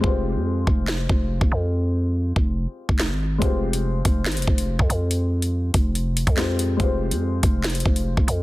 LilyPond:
<<
  \new Staff \with { instrumentName = "Felt piano" } { \time 4/4 \key f \minor \tempo 4 = 142 <aes c' f' g' c''>1~ | <aes c' f' g' c''>1 | <aes c' f' g' c''>1~ | <aes c' f' g' c''>2. <aes c' f' g' c''>4 |
<aes c' f' g' c''>1 | }
  \new Staff \with { instrumentName = "808-style bass" } { \clef bass \time 4/4 \key f \minor f,,8. f,8. f,,4 f,,8. f,,16 f,8~ | f,4. f,,8. r8 f,,8 aes,,8. | f,,4. f,,8 aes,,16 f,,16 f,,8. f,16 f,8~ | f,4. f,,4~ f,,16 f,4~ f,16 |
f,,8. f,8. f,,4 f,,8. f,,16 f,8 | }
  \new DrumStaff \with { instrumentName = "Drums" } \drummode { \time 4/4 bd4 r8 bd8 <hc sn>8 bd8 r16 bd8. | r4 r8 bd8 r8. bd16 <hc sn>4 | <hh bd>8. hh16 r8 <hh bd>8 <hc hh sn>32 hh32 hh32 hh32 bd16 hh16 r16 bd16 hh8 | hh8. hh16 r8 <hh bd>8 hh8 hh16 <hh bd>16 <hc sn>8 hh8 |
<hh bd>8. hh16 r8 <hh bd>8 <hc hh sn>32 hh32 hh32 hh32 bd16 hh16 r16 bd16 hh8 | }
>>